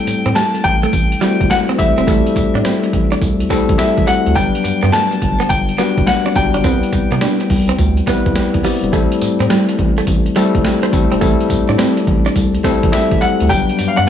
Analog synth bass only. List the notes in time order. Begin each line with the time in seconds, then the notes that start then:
0.07 A2
0.26 A2
0.65 A1
0.93 A1
1.41 G1
1.79 A1
1.98 E1
2.08 A1
2.36 A2
2.55 A2
2.94 A1
3.22 C2
3.70 A1
3.79 A1
3.98 A1
4.27 D2
4.36 G1
4.65 G2
4.83 G2
5.22 G1
5.50 G1
5.98 F#1
6.36 G1
6.55 G1
6.64 C2
6.93 C3
7.12 C3
7.50 C2
7.79 D2
8.26 C2
8.36 C2
8.55 C2
8.83 E1
8.93 A1
9.22 A2
9.40 A2
9.79 A1
10.07 A1
10.55 G1
10.93 A1
11.12 E1
11.22 A1
11.50 A2
11.69 A2
12.07 A1
12.36 C2
12.84 A1
12.94 A1
13.12 A1
13.41 D2
13.50 G1
13.80 G2
13.99 G2